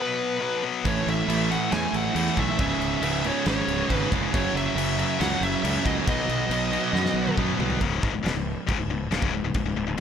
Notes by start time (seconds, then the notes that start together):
Already playing: B2 F#3 B3
0.02 B4
0.40 B2 F#3 B3
0.63 B2 F#3 B3
0.85 A1 A2 E3 A3 C#5, kick, crash
1.07 A1 E5, crash
1.27 A1 A2 E3 A3, crash
1.50 A2 E3 A3 F#5, crash
1.70 E2 A2 E3 A3 G#5, snare, crash
1.93 A1 F#5, crash
2.15 E2 A2 E3 A3, crash
2.36 B1 A2 E3 A3 E5, kick, crash
2.58 C#1 C#2 G#2 C#3 E5, kick, crash
2.79 C#1, crash
3.01 C#1 C#2 G#2 C#3 E5, crash
3.24 C#2 G#2 C#3 C#5, crash
3.46 G#1 C#2 G#2 C#3 C#5, snare, crash
3.68 C#1, crash
3.89 G#1 C#2 G#2 C#3, kick, crash
3.94 B4
4.11 F1 C#2 G#2 C#3, kick, crash
4.32 F#1 F#2 C#3 F#3 C#5, kick, crash
4.53 F#1 E5, crash
4.75 F#1 F#2 C#3 F#3, crash
4.97 F#2 C#3 F#3, crash
5.19 C#2 F#2 C#3 F#3 F#5, snare, crash
5.41 F#1 E5, crash
5.63 C#2 F#2 C#3 F#3, crash
5.85 C#2 F#2 C#3 F#3 D#5, kick, crash
6.06 B1 B2 F#3 B3 D#5, kick, crash
6.29 B1, crash
6.50 B1 B2 F#3 B3, crash
6.72 B2 F#3 B3, crash
6.92 F#2 B2 F#3 B3, snare
7.06 snare
7.14 B1
7.27 high tom
7.37 F#2 B2 F#3 B3, kick, mid tom
7.59 C2 B2 F#3 B3, floor tom
7.70 floor tom
7.80 C#1 C#2 G#2 C#3, kick, crash
8.02 G#1 G#2 D#3, kick
8.13 C#1 C#2 G#2
8.23 E1 E2 B2, snare, crash
8.34 C#1 C#2 G#2
8.67 C#1 C#2 G#2, kick, crash
8.78 C#1 C#2 G#2
8.88 C#1 C#2 G#2
9.11 D#1 D#2 A#2, snare, crash
9.22 C#1 C#2 G#2, kick
9.34 C#1 C#2 G#2
9.44 C#1 C#2 G#2
9.54 C#1 C#2 G#2, kick, crash
9.66 C#1 C#2 G#2
9.77 C#1 C#2 G#2
9.87 C#1 C#2 G#2